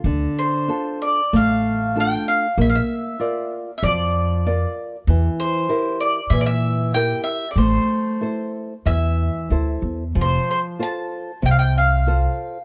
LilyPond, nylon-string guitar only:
\new Staff \with { instrumentName = "Nylon-string guitar" } { \time 4/4 \key d \minor \tempo 4 = 95 d4 <d' f' a'>4 a4 <d' f' a'>4 | bes4 <f' bes' d''>4 f4 <f' bes' d''>4 | e4 <e' g' bes'>4 e4 <e' g' bes'>4 | a4 <e' a' c''>4 e4 <e' a' c''>4 |
f4 <f' a' c''>4 c4 <f' a' c''>4 | }